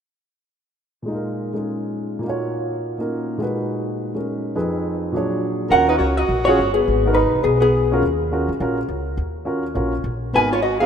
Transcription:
1.02 2.17 A#2 soft
1.02 1.52 G#3 soft
1.08 1.54 D#4 soft
1.08 2.24 F4 soft
1.14 2.27 A#4 soft
1.54 2.23 G#3 soft
1.54 2.23 C#4 soft
1.54 2.22 D#4 soft
1.54 2.24 G#4 soft
2.19 3.36 A#2 medium
2.19 2.97 A#3 soft
2.23 2.98 D#4 soft
2.23 2.98 F4 soft
2.28 3.40 F#4 soft
2.28 3.42 C#5 medium
2.98 3.38 A#3 soft
2.98 3.39 C#4 soft
2.98 3.38 D#4 soft
2.98 3.39 F4 soft
2.98 3.40 A#4 soft
3.38 4.54 A#2 soft
3.38 4.13 G#3 soft
3.38 4.15 D#4 soft
3.38 4.56 F#4 soft
3.43 4.55 B4 medium
4.15 4.55 G#3 soft
4.15 4.55 C#4 soft
4.15 4.54 D#4 soft
4.15 4.56 A#4 soft
4.55 5.13 F2 medium
4.55 5.13 F3 soft
4.55 5.13 D#4 soft
4.55 5.14 G#4 soft
4.55 5.14 B4 medium
5.12 5.70 A#2 medium
5.12 5.71 F#3 soft
5.12 5.72 D4 medium
5.12 5.72 G#4 soft
5.17 5.73 C#5 medium
5.70 5.98 D#2 medium
5.70 6.14 C#4 medium
5.70 6.15 F4 medium
5.70 6.15 F#4 medium
5.70 5.87 A#4 medium
5.70 6.15 A#4 medium
5.70 5.90 F#5 loud
5.89 5.99 D#4 medium
5.89 5.94 B4 medium
5.98 6.27 C#2 medium
5.98 6.17 F#4 medium
5.98 6.17 C#5 medium
6.17 6.46 F#4 medium
6.17 6.45 D#5 medium
6.29 6.56 A#1 medium
6.45 6.57 C#4 medium
6.45 6.57 F4 medium
6.45 6.73 F#4 medium
6.45 6.58 F#4 medium
6.45 6.76 C#5 loud
6.49 6.58 G#4 medium
6.59 6.85 G1 medium
6.74 7.12 B3 medium
6.74 7.14 G#4 medium
6.88 7.23 G#1 medium
7.06 7.15 B3 medium
7.06 7.15 D#4 soft
7.06 7.16 F#4 medium
7.06 7.16 A#4 medium
7.13 7.41 D#4 medium
7.13 7.44 B4 medium
7.27 7.35 B1 medium
7.36 7.44 G1 medium
7.43 8.00 B1 medium
7.43 7.59 B3 medium
7.43 7.61 G#4 medium
7.60 7.98 B3 medium
7.60 8.74 G#4 medium
7.92 8.01 C#4 medium
7.92 8.02 F4 medium
7.92 8.02 F#4 medium
7.92 8.02 A#4 medium
8.03 8.46 D#2 medium
8.32 8.48 C#4 medium
8.32 8.48 F4 soft
8.32 8.48 F#4 medium
8.32 8.48 A#4 medium
8.49 8.59 C#2 medium
8.60 8.87 A#1 medium
8.60 8.76 C#4 medium
8.60 8.77 F4 medium
8.60 8.77 F#4 medium
8.60 8.77 A#4 medium
8.89 9.16 C#2 medium
9.17 9.73 D#2 medium
9.45 9.62 C#4 soft
9.45 9.62 F4 soft
9.45 9.63 F#4 soft
9.45 9.63 A#4 medium
9.75 10.02 A#1 medium
9.75 9.91 C#4 medium
9.75 9.92 F4 soft
9.75 9.92 F#4 soft
9.75 9.92 A#4 medium
10.04 10.31 A#1 medium
10.33 10.86 G#1 medium
10.33 10.50 B3 medium
10.33 10.50 D#4 medium
10.33 10.50 F#4 soft
10.33 10.51 A#4 medium
10.33 10.51 B4 medium
10.33 10.51 G#5 loud
10.52 10.62 F4 medium
10.52 10.62 C#5 medium
10.62 10.79 F#4 medium
10.62 10.81 D#5 medium
10.80 10.86 B3 medium
10.80 10.86 D#4 medium
10.80 10.86 F#4 medium
10.80 10.86 G#4 medium
10.80 10.86 F5 medium

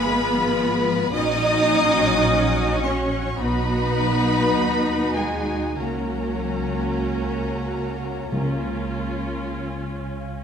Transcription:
0.00 1.14 G#1 medium
0.00 0.56 G#2 medium
0.00 0.32 F3 medium
0.00 0.59 G#3 medium
0.00 1.14 B3 loud
0.00 1.19 G#4 medium
0.00 1.10 B4 loud
0.00 1.19 F5 medium
0.00 1.19 G#5 medium
0.00 1.14 B5 loud
0.04 1.12 G#3 medium
0.04 1.14 F4 medium
0.04 1.19 F4 medium
0.33 0.86 F3 medium
0.60 1.19 G#3 medium
0.87 1.19 F3 medium
1.13 3.35 A#1 medium
1.13 3.45 A#2 medium
1.13 3.35 C#4 medium
1.13 2.78 D#4 loud
1.13 3.35 F#4 medium
1.13 2.79 D#5 loud
1.13 2.82 D#6 loud
1.43 5.33 A#3 medium
1.71 3.99 F#3 medium
2.00 2.55 C#4 medium
2.27 4.58 F#4 medium
2.56 3.45 C#4 medium
2.81 3.40 C#4 medium
2.81 3.38 C#5 medium
2.81 3.45 C#5 medium
2.81 3.39 C#6 medium
3.13 5.48 F#5 medium
3.39 4.55 B1 medium
3.39 5.84 B2 medium
3.39 5.13 B3 loud
3.39 5.78 D#4 medium
3.39 5.74 F#4 medium
3.39 5.17 B4 loud
3.39 5.13 B5 loud
3.70 5.84 B3 medium
4.00 6.10 F#3 medium
4.29 4.88 D#4 medium
4.57 5.76 D#2 medium
4.57 6.73 F#4 medium
4.89 5.84 D#4 medium
5.15 5.78 G#3 medium
5.15 5.77 G#4 medium
5.15 5.84 D#5 medium
5.15 5.78 G#5 medium
5.49 7.68 F#5 medium
5.77 8.31 C#2 medium
5.77 8.32 C#3 medium
5.77 9.53 A#3 medium
5.77 8.31 C#4 medium
5.77 8.29 F#4 medium
5.77 9.53 A#4 medium
5.77 9.57 A#5 medium
6.11 8.38 F#3 soft
6.42 7.05 C#4 soft
6.74 8.38 F#4 medium
7.06 8.95 C#4 soft
7.39 8.01 C#5 medium
7.70 8.38 F#5 soft
8.02 9.89 C#5 medium
8.32 10.44 C#2 medium
8.32 10.15 C#3 medium
8.32 10.44 C#3 medium
8.32 10.44 C#4 medium
8.32 10.44 F4 medium
8.65 10.44 G#3 soft
8.96 10.44 C#4 soft
9.28 10.44 F4 soft
9.59 10.44 G#4 soft
9.90 10.44 C#5 soft
10.20 10.44 F5 soft

